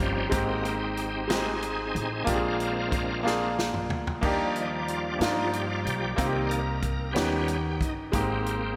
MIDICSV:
0, 0, Header, 1, 5, 480
1, 0, Start_track
1, 0, Key_signature, -3, "major"
1, 0, Tempo, 651466
1, 239, Time_signature, 6, 3, 24, 8
1, 6456, End_track
2, 0, Start_track
2, 0, Title_t, "Tonewheel organ"
2, 0, Program_c, 0, 16
2, 0, Note_on_c, 0, 53, 51
2, 0, Note_on_c, 0, 55, 43
2, 0, Note_on_c, 0, 61, 54
2, 1, Note_on_c, 0, 67, 85
2, 4, Note_on_c, 0, 63, 58
2, 6, Note_on_c, 0, 60, 58
2, 206, Note_off_c, 0, 53, 0
2, 210, Note_off_c, 0, 55, 0
2, 212, Note_off_c, 0, 61, 0
2, 233, Note_off_c, 0, 67, 0
2, 240, Note_off_c, 0, 60, 0
2, 242, Note_on_c, 0, 67, 52
2, 247, Note_on_c, 0, 58, 47
2, 249, Note_on_c, 0, 60, 58
2, 429, Note_on_c, 0, 66, 62
2, 460, Note_off_c, 0, 67, 0
2, 469, Note_off_c, 0, 63, 0
2, 469, Note_on_c, 0, 67, 81
2, 470, Note_off_c, 0, 60, 0
2, 478, Note_on_c, 0, 63, 59
2, 479, Note_off_c, 0, 66, 0
2, 479, Note_on_c, 0, 60, 58
2, 562, Note_off_c, 0, 58, 0
2, 924, Note_off_c, 0, 67, 0
2, 948, Note_off_c, 0, 60, 0
2, 950, Note_on_c, 0, 68, 80
2, 951, Note_off_c, 0, 63, 0
2, 957, Note_on_c, 0, 60, 57
2, 960, Note_on_c, 0, 63, 53
2, 1647, Note_off_c, 0, 60, 0
2, 1649, Note_off_c, 0, 63, 0
2, 1683, Note_on_c, 0, 56, 51
2, 1685, Note_on_c, 0, 60, 46
2, 1685, Note_on_c, 0, 70, 78
2, 1687, Note_on_c, 0, 62, 60
2, 1694, Note_on_c, 0, 65, 61
2, 1695, Note_off_c, 0, 68, 0
2, 2370, Note_off_c, 0, 56, 0
2, 2371, Note_off_c, 0, 60, 0
2, 2373, Note_off_c, 0, 62, 0
2, 2393, Note_on_c, 0, 56, 39
2, 2395, Note_on_c, 0, 62, 44
2, 2396, Note_on_c, 0, 60, 41
2, 2610, Note_off_c, 0, 56, 0
2, 2611, Note_off_c, 0, 70, 0
2, 2612, Note_off_c, 0, 60, 0
2, 2612, Note_off_c, 0, 62, 0
2, 2615, Note_off_c, 0, 65, 0
2, 3107, Note_on_c, 0, 55, 44
2, 3109, Note_on_c, 0, 53, 45
2, 3117, Note_on_c, 0, 74, 54
2, 3351, Note_on_c, 0, 63, 70
2, 3460, Note_off_c, 0, 63, 0
2, 3604, Note_on_c, 0, 65, 72
2, 3771, Note_on_c, 0, 62, 53
2, 3794, Note_off_c, 0, 65, 0
2, 3829, Note_off_c, 0, 62, 0
2, 3837, Note_on_c, 0, 63, 70
2, 4032, Note_off_c, 0, 63, 0
2, 4033, Note_on_c, 0, 66, 57
2, 4056, Note_on_c, 0, 67, 74
2, 4069, Note_off_c, 0, 66, 0
2, 4175, Note_on_c, 0, 65, 71
2, 4190, Note_off_c, 0, 67, 0
2, 4296, Note_off_c, 0, 65, 0
2, 4297, Note_on_c, 0, 67, 82
2, 4521, Note_off_c, 0, 55, 0
2, 4522, Note_off_c, 0, 53, 0
2, 4526, Note_off_c, 0, 74, 0
2, 4543, Note_on_c, 0, 51, 51
2, 4550, Note_on_c, 0, 58, 42
2, 4550, Note_on_c, 0, 74, 54
2, 4705, Note_off_c, 0, 67, 0
2, 4727, Note_on_c, 0, 72, 61
2, 4783, Note_on_c, 0, 70, 89
2, 4787, Note_off_c, 0, 72, 0
2, 4868, Note_off_c, 0, 51, 0
2, 4871, Note_off_c, 0, 58, 0
2, 4871, Note_off_c, 0, 74, 0
2, 5003, Note_off_c, 0, 70, 0
2, 5011, Note_on_c, 0, 70, 85
2, 5241, Note_on_c, 0, 55, 45
2, 5246, Note_off_c, 0, 70, 0
2, 5249, Note_on_c, 0, 67, 78
2, 5250, Note_on_c, 0, 59, 44
2, 5254, Note_on_c, 0, 61, 52
2, 5492, Note_off_c, 0, 67, 0
2, 5500, Note_on_c, 0, 67, 79
2, 5576, Note_off_c, 0, 55, 0
2, 5581, Note_off_c, 0, 59, 0
2, 5583, Note_off_c, 0, 61, 0
2, 5752, Note_on_c, 0, 63, 72
2, 5755, Note_off_c, 0, 67, 0
2, 5860, Note_off_c, 0, 63, 0
2, 5981, Note_on_c, 0, 67, 49
2, 5983, Note_on_c, 0, 58, 45
2, 5984, Note_on_c, 0, 60, 71
2, 6456, Note_off_c, 0, 58, 0
2, 6456, Note_off_c, 0, 60, 0
2, 6456, Note_off_c, 0, 67, 0
2, 6456, End_track
3, 0, Start_track
3, 0, Title_t, "Grand piano"
3, 0, Program_c, 1, 0
3, 0, Control_c, 1, 64, 127
3, 0, Note_on_c, 1, 51, 65
3, 0, Note_on_c, 1, 58, 67
3, 0, Note_on_c, 1, 61, 66
3, 0, Note_on_c, 1, 63, 64
3, 0, Note_on_c, 1, 67, 80
3, 107, Note_off_c, 1, 58, 0
3, 112, Note_off_c, 1, 61, 0
3, 118, Note_off_c, 1, 63, 0
3, 120, Note_off_c, 1, 67, 0
3, 208, Note_off_c, 1, 51, 0
3, 218, Note_on_c, 1, 56, 69
3, 229, Note_on_c, 1, 60, 68
3, 235, Note_on_c, 1, 44, 56
3, 236, Note_on_c, 1, 63, 60
3, 246, Note_on_c, 1, 67, 81
3, 248, Control_c, 1, 64, 0
3, 376, Control_c, 1, 64, 127
3, 825, Note_off_c, 1, 56, 0
3, 830, Note_off_c, 1, 60, 0
3, 834, Note_off_c, 1, 63, 0
3, 839, Note_off_c, 1, 67, 0
3, 926, Note_off_c, 1, 44, 0
3, 940, Note_on_c, 1, 56, 60
3, 950, Note_on_c, 1, 60, 54
3, 956, Note_on_c, 1, 63, 54
3, 967, Note_on_c, 1, 67, 52
3, 1010, Note_off_c, 1, 67, 0
3, 1015, Note_on_c, 1, 68, 66
3, 1546, Note_off_c, 1, 56, 0
3, 1550, Note_off_c, 1, 60, 0
3, 1554, Note_off_c, 1, 63, 0
3, 1583, Note_off_c, 1, 68, 0
3, 1653, Note_on_c, 1, 58, 71
3, 1661, Note_on_c, 1, 62, 68
3, 1666, Note_on_c, 1, 46, 53
3, 1670, Note_on_c, 1, 65, 61
3, 1680, Note_on_c, 1, 67, 62
3, 1687, Control_c, 1, 64, 0
3, 1726, Note_off_c, 1, 67, 0
3, 1729, Note_on_c, 1, 68, 77
3, 1834, Control_c, 1, 64, 127
3, 2262, Note_off_c, 1, 58, 0
3, 2266, Note_off_c, 1, 62, 0
3, 2271, Note_off_c, 1, 65, 0
3, 2300, Note_off_c, 1, 68, 0
3, 2361, Note_off_c, 1, 46, 0
3, 2380, Note_on_c, 1, 58, 68
3, 2388, Note_on_c, 1, 62, 63
3, 2396, Note_on_c, 1, 65, 62
3, 2407, Note_on_c, 1, 68, 78
3, 2985, Note_off_c, 1, 58, 0
3, 2989, Note_off_c, 1, 62, 0
3, 2993, Note_off_c, 1, 65, 0
3, 2999, Note_off_c, 1, 68, 0
3, 3104, Note_on_c, 1, 58, 75
3, 3115, Note_on_c, 1, 62, 67
3, 3117, Note_on_c, 1, 51, 60
3, 3119, Note_on_c, 1, 63, 69
3, 3126, Control_c, 1, 64, 0
3, 3132, Note_on_c, 1, 67, 81
3, 3231, Control_c, 1, 64, 127
3, 3707, Note_off_c, 1, 58, 0
3, 3712, Note_off_c, 1, 62, 0
3, 3715, Note_off_c, 1, 63, 0
3, 3721, Note_off_c, 1, 67, 0
3, 3807, Note_off_c, 1, 51, 0
3, 3821, Note_on_c, 1, 58, 55
3, 3834, Note_on_c, 1, 62, 52
3, 3842, Note_on_c, 1, 63, 53
3, 3851, Note_on_c, 1, 65, 58
3, 4425, Note_off_c, 1, 58, 0
3, 4432, Note_off_c, 1, 62, 0
3, 4436, Note_off_c, 1, 63, 0
3, 4440, Note_off_c, 1, 65, 0
3, 4540, Note_on_c, 1, 58, 64
3, 4545, Note_on_c, 1, 60, 58
3, 4555, Note_on_c, 1, 48, 53
3, 4555, Note_on_c, 1, 63, 63
3, 4564, Note_on_c, 1, 65, 59
3, 4566, Control_c, 1, 64, 0
3, 4607, Note_off_c, 1, 65, 0
3, 4613, Note_on_c, 1, 67, 72
3, 4713, Control_c, 1, 64, 127
3, 5145, Note_off_c, 1, 58, 0
3, 5147, Note_off_c, 1, 60, 0
3, 5152, Note_off_c, 1, 63, 0
3, 5181, Note_off_c, 1, 67, 0
3, 5245, Note_off_c, 1, 48, 0
3, 5260, Note_on_c, 1, 59, 55
3, 5267, Note_on_c, 1, 61, 51
3, 5276, Note_on_c, 1, 51, 54
3, 5279, Note_on_c, 1, 63, 53
3, 5285, Note_on_c, 1, 67, 63
3, 5286, Control_c, 1, 64, 0
3, 5413, Control_c, 1, 64, 127
3, 5864, Note_off_c, 1, 59, 0
3, 5868, Note_off_c, 1, 61, 0
3, 5874, Note_off_c, 1, 63, 0
3, 5877, Note_off_c, 1, 67, 0
3, 5966, Note_off_c, 1, 51, 0
3, 5982, Note_on_c, 1, 56, 65
3, 5990, Note_on_c, 1, 58, 49
3, 5995, Note_on_c, 1, 44, 53
3, 6001, Note_on_c, 1, 63, 62
3, 6003, Note_on_c, 1, 67, 76
3, 6004, Control_c, 1, 64, 0
3, 6038, Note_on_c, 1, 60, 62
3, 6040, Note_off_c, 1, 58, 0
3, 6113, Control_c, 1, 64, 127
3, 6456, Note_off_c, 1, 44, 0
3, 6456, Note_off_c, 1, 56, 0
3, 6456, Note_off_c, 1, 60, 0
3, 6456, Note_off_c, 1, 63, 0
3, 6456, Note_off_c, 1, 67, 0
3, 6456, End_track
4, 0, Start_track
4, 0, Title_t, "Upright bass"
4, 0, Program_c, 2, 32
4, 0, Note_on_c, 2, 31, 85
4, 220, Note_off_c, 2, 31, 0
4, 237, Note_on_c, 2, 32, 93
4, 1407, Note_off_c, 2, 32, 0
4, 1437, Note_on_c, 2, 33, 81
4, 1658, Note_off_c, 2, 33, 0
4, 1677, Note_on_c, 2, 34, 89
4, 2877, Note_off_c, 2, 34, 0
4, 2877, Note_on_c, 2, 38, 76
4, 3097, Note_off_c, 2, 38, 0
4, 3114, Note_on_c, 2, 39, 81
4, 3805, Note_off_c, 2, 39, 0
4, 3833, Note_on_c, 2, 43, 75
4, 4285, Note_off_c, 2, 43, 0
4, 4313, Note_on_c, 2, 35, 77
4, 4535, Note_off_c, 2, 35, 0
4, 4554, Note_on_c, 2, 36, 82
4, 5245, Note_off_c, 2, 36, 0
4, 5273, Note_on_c, 2, 39, 83
4, 5724, Note_off_c, 2, 39, 0
4, 5753, Note_on_c, 2, 31, 81
4, 5975, Note_off_c, 2, 31, 0
4, 5993, Note_on_c, 2, 32, 97
4, 6456, Note_off_c, 2, 32, 0
4, 6456, End_track
5, 0, Start_track
5, 0, Title_t, "Drums"
5, 1, Note_on_c, 9, 42, 35
5, 74, Note_off_c, 9, 42, 0
5, 234, Note_on_c, 9, 42, 79
5, 236, Note_on_c, 9, 36, 88
5, 308, Note_off_c, 9, 42, 0
5, 310, Note_off_c, 9, 36, 0
5, 480, Note_on_c, 9, 42, 42
5, 553, Note_off_c, 9, 42, 0
5, 717, Note_on_c, 9, 42, 41
5, 790, Note_off_c, 9, 42, 0
5, 957, Note_on_c, 9, 42, 60
5, 962, Note_on_c, 9, 38, 96
5, 1030, Note_off_c, 9, 42, 0
5, 1036, Note_off_c, 9, 38, 0
5, 1197, Note_on_c, 9, 42, 42
5, 1270, Note_off_c, 9, 42, 0
5, 1443, Note_on_c, 9, 42, 36
5, 1517, Note_off_c, 9, 42, 0
5, 1672, Note_on_c, 9, 42, 81
5, 1675, Note_on_c, 9, 36, 85
5, 1746, Note_off_c, 9, 42, 0
5, 1748, Note_off_c, 9, 36, 0
5, 1916, Note_on_c, 9, 42, 38
5, 1990, Note_off_c, 9, 42, 0
5, 2153, Note_on_c, 9, 36, 79
5, 2156, Note_on_c, 9, 42, 40
5, 2227, Note_off_c, 9, 36, 0
5, 2229, Note_off_c, 9, 42, 0
5, 2405, Note_on_c, 9, 38, 48
5, 2479, Note_off_c, 9, 38, 0
5, 2643, Note_on_c, 9, 38, 70
5, 2717, Note_off_c, 9, 38, 0
5, 2756, Note_on_c, 9, 45, 61
5, 2830, Note_off_c, 9, 45, 0
5, 2876, Note_on_c, 9, 43, 77
5, 2949, Note_off_c, 9, 43, 0
5, 3001, Note_on_c, 9, 43, 77
5, 3075, Note_off_c, 9, 43, 0
5, 3115, Note_on_c, 9, 36, 80
5, 3115, Note_on_c, 9, 49, 73
5, 3188, Note_off_c, 9, 49, 0
5, 3189, Note_off_c, 9, 36, 0
5, 3357, Note_on_c, 9, 42, 36
5, 3431, Note_off_c, 9, 42, 0
5, 3597, Note_on_c, 9, 42, 39
5, 3671, Note_off_c, 9, 42, 0
5, 3838, Note_on_c, 9, 42, 58
5, 3844, Note_on_c, 9, 38, 90
5, 3912, Note_off_c, 9, 42, 0
5, 3918, Note_off_c, 9, 38, 0
5, 4077, Note_on_c, 9, 42, 41
5, 4151, Note_off_c, 9, 42, 0
5, 4322, Note_on_c, 9, 42, 34
5, 4396, Note_off_c, 9, 42, 0
5, 4554, Note_on_c, 9, 36, 80
5, 4555, Note_on_c, 9, 42, 78
5, 4627, Note_off_c, 9, 36, 0
5, 4628, Note_off_c, 9, 42, 0
5, 4796, Note_on_c, 9, 42, 41
5, 4869, Note_off_c, 9, 42, 0
5, 5029, Note_on_c, 9, 42, 43
5, 5030, Note_on_c, 9, 36, 72
5, 5102, Note_off_c, 9, 42, 0
5, 5103, Note_off_c, 9, 36, 0
5, 5272, Note_on_c, 9, 42, 59
5, 5278, Note_on_c, 9, 38, 93
5, 5346, Note_off_c, 9, 42, 0
5, 5352, Note_off_c, 9, 38, 0
5, 5511, Note_on_c, 9, 42, 42
5, 5585, Note_off_c, 9, 42, 0
5, 5752, Note_on_c, 9, 36, 73
5, 5762, Note_on_c, 9, 42, 35
5, 5826, Note_off_c, 9, 36, 0
5, 5835, Note_off_c, 9, 42, 0
5, 5992, Note_on_c, 9, 42, 77
5, 5993, Note_on_c, 9, 36, 85
5, 6065, Note_off_c, 9, 42, 0
5, 6067, Note_off_c, 9, 36, 0
5, 6236, Note_on_c, 9, 42, 39
5, 6310, Note_off_c, 9, 42, 0
5, 6456, End_track
0, 0, End_of_file